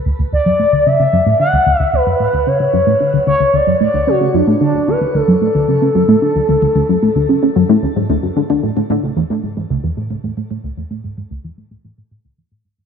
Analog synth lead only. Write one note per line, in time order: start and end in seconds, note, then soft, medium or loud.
0.33 0.88 D5 loud
0.86 1.39 E5 loud
1.40 1.79 F#5 loud
1.79 1.95 E5 loud
1.94 2.48 B4 loud
2.47 3.27 C#5 loud
3.27 3.56 C#5 loud
3.54 3.80 D5 medium
3.81 4.09 D5 medium
4.08 4.36 F#4 medium
4.35 4.61 D4 medium
4.61 4.90 D4 medium
4.88 5.17 B4 loud
5.15 8.10 A4 loud